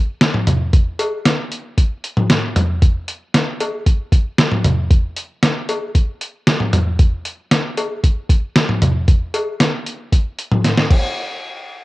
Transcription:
0.21 snare, closed hi-hat
0.34 mid tom
0.47 closed hi-hat, mid tom
0.73 kick, closed hi-hat
0.99 closed hi-hat, cowbell
1.25 snare, closed hi-hat
1.52 closed hi-hat
1.78 kick, closed hi-hat
2.04 closed hi-hat
2.17 mid tom
2.30 snare, closed hi-hat
2.56 closed hi-hat, mid tom
2.82 kick, closed hi-hat
3.08 closed hi-hat
3.34 snare, closed hi-hat
3.60 closed hi-hat, cowbell
3.86 kick, closed hi-hat
4.12 kick, closed hi-hat
4.38 snare, closed hi-hat
4.52 mid tom
4.64 closed hi-hat, mid tom
4.91 kick, closed hi-hat
5.16 closed hi-hat
5.43 snare, closed hi-hat
5.69 closed hi-hat, cowbell
5.95 kick, closed hi-hat
6.21 closed hi-hat
6.47 snare, closed hi-hat
6.60 mid tom
6.73 closed hi-hat, mid tom
6.99 kick, closed hi-hat
7.25 closed hi-hat
7.51 snare, closed hi-hat
7.77 closed hi-hat, cowbell
8.04 kick, closed hi-hat
8.29 kick, closed hi-hat
8.56 snare, closed hi-hat
8.69 mid tom
8.82 closed hi-hat, mid tom
9.08 kick, closed hi-hat
9.34 closed hi-hat, cowbell
9.60 snare, closed hi-hat
9.86 closed hi-hat
10.12 kick, closed hi-hat
10.38 closed hi-hat
10.51 mid tom
10.64 snare, closed hi-hat
10.77 snare
10.91 kick, crash

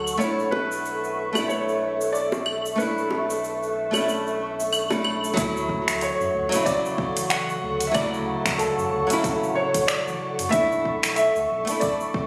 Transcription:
Already playing: D2 F#3 A3 C#4 E4 A4 F#5 C#6
0.07 cabasa
0.17 B1 A3 C#4 C#5 E5, cabasa
0.22 D4 E4
0.39 cabasa
0.51 B4, high bongo
0.72 cabasa
0.85 cabasa
1.04 cabasa
1.33 A3 B3, high bongo, cabasa, claves
1.37 D4 E4
1.48 C#5, cabasa
1.69 cabasa
2.01 cabasa
2.13 D5, cabasa
2.32 high bongo, cabasa
2.46 claves
2.66 cabasa
2.76 A3 C#4 B4, cabasa
2.80 D4 E4
2.98 cabasa
3.10 high bongo
3.30 cabasa
3.44 cabasa
3.63 cabasa
3.91 A3 C#4 D4, high bongo, cabasa, claves
3.97 E4
4.09 cabasa
4.27 cabasa
4.60 cabasa
4.73 cabasa, claves
4.90 A3 C#4 D4 E4, high bongo, cabasa
5.04 claves
5.24 cabasa
5.34 D2 F#3 A3 A4 F#5 C#6, kick, closed hi-hat
5.38 C#4 E4, cabasa
5.57 cabasa
5.69 kick
5.88 D2, finger snap, closed hi-hat, cabasa
6.01 C#5, closed hi-hat, cabasa
6.20 F#2, cabasa
6.34 D2
6.49 F#3 A3, closed hi-hat
6.53 C#3 E4, cabasa
6.66 D5, kick, closed hi-hat, cabasa
6.86 cabasa
6.98 kick
7.17 A1, closed hi-hat, cabasa
7.30 F#5, finger snap, closed hi-hat, cabasa
7.49 cabasa
7.63 D2
7.80 closed hi-hat, cabasa
7.87 E5
7.92 F#3 A3 D5, kick, closed hi-hat, cabasa, claves
7.96 C#3 E4
8.13 D2, cabasa
8.45 D2, finger snap, kick, closed hi-hat, cabasa
8.58 A4, closed hi-hat, cabasa
8.78 F#2, cabasa
8.92 D2
9.07 F#3 A3, closed hi-hat
9.11 C#3 E4, cabasa
9.24 kick, closed hi-hat, cabasa
9.42 D1, cabasa
9.55 C#5
9.74 kick, closed hi-hat, cabasa
9.87 D5, finger snap, closed hi-hat, cabasa
10.07 A1, cabasa
10.39 F#2, closed hi-hat, cabasa
10.49 B1 A3 E5, kick, closed hi-hat
10.53 D4 E4 E5, cabasa
10.72 cabasa
10.85 kick
11.03 B1, finger snap, closed hi-hat, cabasa
11.16 E5, closed hi-hat, cabasa
11.36 D2, cabasa
11.50 B1
11.65 A3, closed hi-hat, cabasa
11.69 D4 E4
11.80 D5, kick, closed hi-hat, cabasa
12.00 cabasa
12.14 kick

